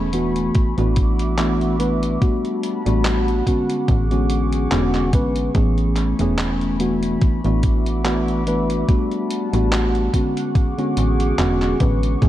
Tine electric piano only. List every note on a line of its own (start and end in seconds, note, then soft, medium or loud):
0.13 0.72 E3 medium
0.13 0.72 A3 medium
0.13 0.72 B3 medium
0.13 0.73 D4 medium
0.13 0.73 F#4 medium
0.77 1.34 E3 medium
0.77 1.34 A3 medium
0.77 1.34 B3 medium
0.77 1.34 D4 medium
0.77 1.34 F#4 medium
1.37 1.75 E3 medium
1.37 1.75 A3 medium
1.37 1.75 B3 medium
1.37 1.76 D4 medium
1.37 1.76 F#4 loud
1.79 2.17 E3 medium
1.79 2.17 A3 medium
1.79 2.17 B3 medium
1.79 2.17 D4 medium
1.79 2.17 B4 medium
2.21 2.80 G3 medium
2.21 2.81 A3 medium
2.21 2.81 B3 medium
2.21 2.81 D4 medium
2.21 2.81 F#4 medium
2.85 3.42 G3 medium
2.85 3.42 A3 medium
2.85 3.42 B3 medium
2.85 3.42 D4 medium
2.85 3.43 F#4 medium
3.46 4.06 D3 medium
3.46 4.06 G#3 medium
3.46 4.06 B3 medium
3.46 4.06 C#4 medium
3.46 4.06 F#4 medium
4.10 4.67 D3 medium
4.10 4.67 G#3 medium
4.10 4.67 B3 medium
4.10 4.67 C#4 medium
4.10 4.68 F#4 medium
4.71 5.09 D3 medium
4.71 5.09 G#3 medium
4.71 5.09 B3 medium
4.71 5.09 C#4 medium
4.71 5.09 F#4 loud
5.13 5.50 D3 medium
5.13 5.51 G#3 medium
5.13 5.51 B3 medium
5.13 5.51 C#4 medium
5.13 5.51 B4 medium
5.54 6.14 E3 medium
5.54 6.14 A3 medium
5.54 6.14 B3 medium
5.54 6.14 C#4 medium
5.54 6.15 G#4 medium
6.19 6.75 E3 medium
6.19 6.76 A3 medium
6.19 6.76 B3 medium
6.19 6.76 C#4 medium
6.19 6.76 G#4 medium
6.79 7.39 E3 medium
6.79 7.39 A3 medium
6.79 7.39 B3 medium
6.79 7.39 D4 medium
6.79 7.39 F#4 medium
7.44 8.00 E3 medium
7.44 8.01 A3 medium
7.44 8.01 B3 medium
7.44 8.01 D4 medium
7.44 8.01 F#4 medium
8.04 8.42 E3 medium
8.04 8.42 A3 medium
8.04 8.42 B3 medium
8.04 8.42 D4 medium
8.04 8.42 F#4 loud
8.46 8.84 E3 medium
8.46 8.84 A3 medium
8.46 8.84 B3 medium
8.46 8.84 D4 medium
8.46 8.85 B4 medium
8.88 9.47 G3 medium
8.88 9.48 A3 medium
8.88 9.48 B3 medium
8.88 9.48 D4 medium
8.88 9.48 F#4 medium
9.53 10.09 G3 medium
9.53 10.09 A3 medium
9.53 10.09 B3 medium
9.53 10.09 D4 medium
9.53 10.09 F#4 medium
10.13 10.72 D3 medium
10.13 10.73 G#3 medium
10.13 10.73 B3 medium
10.13 10.73 C#4 medium
10.13 10.73 F#4 medium
10.78 11.34 D3 medium
10.78 11.34 G#3 medium
10.78 11.34 B3 medium
10.78 11.34 C#4 medium
10.78 11.35 F#4 medium
11.38 11.75 D3 medium
11.38 11.76 G#3 medium
11.38 11.76 B3 medium
11.38 11.76 C#4 medium
11.38 11.76 F#4 loud
11.80 12.17 D3 medium
11.80 12.17 G#3 medium
11.80 12.17 B3 medium
11.80 12.18 C#4 medium
11.80 12.18 B4 medium
12.21 12.29 E3 medium
12.21 12.29 A3 medium
12.21 12.29 B3 medium
12.21 12.29 C#4 medium
12.21 12.29 G#4 medium